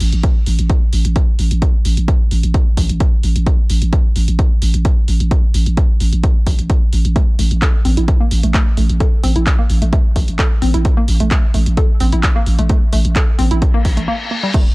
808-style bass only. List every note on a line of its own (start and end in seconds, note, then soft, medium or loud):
0.01 0.12 A1 loud
0.13 0.23 A1 medium
0.47 0.58 A1 medium
0.59 0.70 A1 medium
0.93 1.05 A1 loud
1.05 1.16 A1 medium
1.39 1.51 A1 loud
1.51 1.62 A1 medium
1.85 1.97 A1 loud
1.97 2.08 A1 medium
2.31 2.43 A1 loud
2.44 2.54 A1 medium
2.77 2.89 A1 loud
2.90 3.00 A1 medium
3.24 3.35 A1 medium
3.36 3.46 A1 medium
3.70 3.81 A1 loud
3.82 3.93 A1 medium
4.16 4.28 A1 medium
4.28 4.39 A1 medium
4.62 4.74 A1 loud
4.74 4.85 A1 medium
5.08 5.20 A1 loud
5.20 5.31 A1 medium
5.54 5.66 A1 loud
5.66 5.77 A1 medium
6.00 6.12 A1 loud
6.13 6.23 A1 medium
6.47 6.58 A1 loud
6.59 6.70 A1 medium
6.93 7.04 A1 loud
7.05 7.16 A1 medium
7.39 7.51 A1 loud
7.51 7.62 A1 medium
7.85 7.97 A1 loud
7.97 8.08 A1 medium
8.31 8.43 A1 loud
8.44 8.54 A1 medium
8.77 8.89 A1 loud
8.90 9.00 A1 medium
9.24 9.35 A1 loud
9.36 9.46 A1 medium
9.70 9.81 A1 loud
9.82 9.93 A1 medium
10.16 10.27 A1 loud
10.28 10.39 A1 medium
10.62 10.74 A1 loud
10.74 10.85 A1 medium
11.08 11.20 A1 loud
11.20 11.31 A1 medium
11.54 11.66 A1 loud
11.66 11.77 A1 medium
12.00 12.12 A1 loud
12.13 12.23 A1 medium
12.46 12.58 A1 loud
12.59 12.69 A1 medium
12.93 13.04 A1 loud
13.05 13.16 A1 medium
13.39 13.51 A1 loud
13.51 13.62 A1 medium
13.85 13.97 A1 loud
13.97 14.08 A1 medium